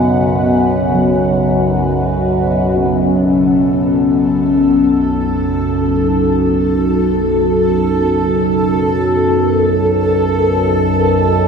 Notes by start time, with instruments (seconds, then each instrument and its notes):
Already playing: synth drone B1 F#2, singing bowl C#3, analog synth pad B3 F#4 F#5, synth texture B4
0.95 singing bowl F#3
2.78 synth drone B1 F#2, synth texture A4